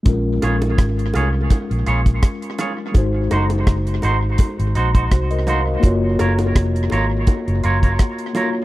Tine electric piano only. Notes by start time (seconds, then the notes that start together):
0.03 G#3 C#4 F4
0.09 A#4
2.92 G#3 D#4 F#4
2.98 C5
5.12 F#4 C5
5.31 A#4 D#5
5.47 C5 F5
5.66 A#4 D#5
5.80 A#3 F4
5.84 F#4 C#5
8.33 A#3 F4 F#4 C#5